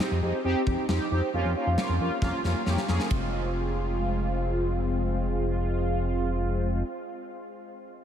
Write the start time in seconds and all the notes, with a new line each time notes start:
0.00 C4 D#4 G4, snare
0.11 F2
0.22 F2 C4 D#4 G4
0.44 F2 C4 D#4 G4
0.67 F2 C4 D#4 G4, kick
0.89 F2 C4 D#4 G4, snare
1.11 F2 C4 D#4 G4
1.33 F2 A#3 C#4 F4
1.45 F2
1.56 A#3 C#4 F4
1.67 F2
1.78 A#3 C#4 F4, snare
1.89 F2
2.00 F2 A#3 C#4 F4
2.22 F2 A#3 C#4 F4, kick, snare
2.44 F2 A#3 C#4 F4, snare
2.66 F2 A#3 C#4 G4, snare
2.77 snare
2.88 F2 A#3 C#4 G#4, snare
3.00 snare
3.11 F1 G#3 C4 F4, kick, ride